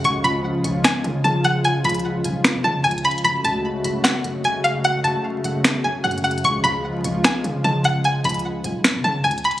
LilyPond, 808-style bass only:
\new Staff \with { instrumentName = "808-style bass" } { \clef bass \time 4/4 \key cis \phrygian \tempo 4 = 150 cis,8 cis,4 cis,4 cis8 cis4~ | cis8 cis,4 b,,8. cis16 cis8 cis,8 r8 | fis,,8 cis,4 fis,,4 fis,,8 fis,,4 | cis,16 fis,,16 fis,,4 fis,,4 fis,,8 fis,4 |
cis,8 cis,4 cis,4 cis8 cis4~ | cis8 cis,4 b,,8. cis16 cis8 cis,8 r8 | }